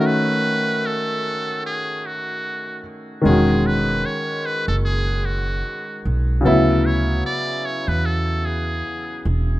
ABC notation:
X:1
M:4/4
L:1/16
Q:"Swing 16ths" 1/4=75
K:E
V:1 name="Muted trumpet"
B4 A4 G2 F4 z2 | G2 B2 c2 B A G2 F4 z2 | A2 c2 =d2 c B A2 G4 z2 |]
V:2 name="Upright piano"
[D,A,CF]12- [D,A,CF]2 z2 | [D,G,CF]16 | [C,F,B,E]16 |]
V:3 name="Upright bass" clef=bass
z16 | E,,,4 z3 F,,,4- F,,, z2 B,,,2 | =D,,4 z3 E,,4- E,, z2 E,,,2 |]